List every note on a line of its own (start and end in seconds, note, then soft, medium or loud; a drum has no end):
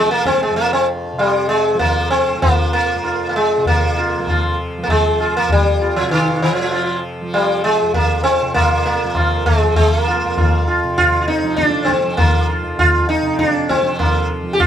0.00 0.50 F2 medium
0.00 1.13 C3 medium
0.00 1.75 F3 medium
0.00 0.10 G#3 medium
0.10 0.26 A#3 medium
0.10 tabla te soft
0.26 0.42 C4 medium
0.26 tabla ke medium
0.42 0.56 G#3 medium
0.42 tabla te medium
0.50 2.95 F2 medium
0.56 0.72 A#3 medium
0.56 tabla tin medium
0.73 0.87 C4 medium
1.13 3.57 C3 medium
1.19 1.48 G3 medium
1.19 tabla na medium
1.49 1.79 G#3 medium
1.75 2.34 F3 medium
1.79 2.10 A#3 medium
1.79 tabla tin medium
1.79 tabla ge medium
2.11 2.42 C4 medium
2.34 4.19 F3 medium
2.42 2.71 A#3 medium
2.42 tabla tin medium
2.42 tabla ge medium
2.73 3.28 A#3 medium
2.95 5.39 F2 soft
3.04 3.33 F4 soft
3.04 tabla na medium
3.29 3.35 A#3 medium
3.36 3.67 G#3 medium
3.58 6.01 C3 medium
3.66 4.55 A#3 medium
3.66 tabla tin medium
3.66 tabla ge medium
3.98 4.26 F4 soft
4.19 4.78 F3 medium
4.27 4.57 F4 soft
4.27 tabla na medium
4.27 tabla ge medium
4.78 6.62 F3 medium
4.83 4.89 A#3 medium
4.88 5.36 G#3 medium
4.88 tabla tin medium
4.88 tabla ge medium
5.20 5.48 F4 soft
5.37 7.82 F2 medium
5.37 5.51 A#3 medium
5.49 5.94 G3 medium
5.49 tabla tin medium
5.49 tabla ge medium
5.82 6.09 F4 soft
5.96 6.10 F3 medium
6.02 8.41 C3 medium
6.10 6.42 D#3 medium
6.10 tabla na medium
6.42 6.99 F3 medium
6.62 7.22 F3 medium
6.72 7.01 F4 soft
6.72 tabla tin medium
7.22 9.04 F3 medium
7.34 7.64 G3 medium
7.34 tabla na medium
7.64 7.94 G#3 medium
7.82 10.23 F2 medium
7.94 8.23 A#3 medium
7.94 tabla tin medium
7.94 tabla ge medium
8.24 8.54 C4 medium
8.42 10.84 C3 medium
8.54 8.84 A#3 medium
8.54 tabla na medium
8.54 tabla ge medium
8.85 9.46 A#3 medium
8.85 tabla te medium
9.04 9.63 F3 medium
9.15 9.45 F4 soft
9.15 tabla na medium
9.15 tabla ge medium
9.46 9.76 G#3 medium
9.46 tabla ge medium
9.63 11.44 F3 medium
9.76 9.91 G#3 medium
9.76 tabla tin medium
9.76 tabla ge medium
9.91 10.02 A3 medium
10.02 10.64 A#3 medium
10.07 10.36 F4 soft
10.24 12.62 F2 medium
10.38 10.66 F4 soft
10.38 tabla na medium
10.38 tabla ge medium
10.68 10.96 F4 soft
10.84 13.21 C3 medium
10.98 11.20 F4 medium
10.98 tabla tin medium
10.98 tabla ge medium
11.21 11.27 F4 medium
11.28 11.56 D#4 medium
11.28 tabla te medium
11.44 12.04 F3 medium
11.57 11.81 D4 medium
11.57 tabla ke medium
11.83 12.17 C4 medium
11.83 11.89 D4 medium
11.88 tabla ke medium
12.04 13.82 F3 medium
12.17 12.46 A#3 medium
12.17 tabla na medium
12.17 tabla ge medium
12.49 12.77 F4 soft
12.62 14.67 F2 medium
12.79 13.08 F4 loud
12.79 tabla tin medium
12.79 tabla ge medium
13.09 13.38 D#4 medium
13.09 tabla te medium
13.22 14.67 C3 medium
13.39 13.70 D4 medium
13.39 tabla ke medium
13.69 13.99 C4 medium
13.69 tabla ke medium
13.82 14.43 F3 medium
13.99 14.28 A#3 medium
13.99 tabla na medium
13.99 tabla ge medium
14.43 14.67 F3 soft
14.53 14.60 G4 medium
14.60 14.67 F4 loud
14.60 tabla tin medium
14.60 tabla ge medium